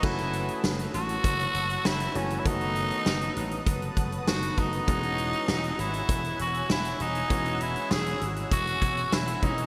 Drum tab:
CC |x---------------|----------------|----------------|----------------|
HH |-xxx-xxxxxxx-xxx|xxxx-xxxxxxx-xxx|xxxx-xxxxxxx-xxx|xxxx-xxxxxxx-xxx|
SD |----o-------o---|----o-------o---|----o-------o---|----o-------o---|
BD |o-------o-------|o-------o-o---o-|o-------o-------|o-------o-o---o-|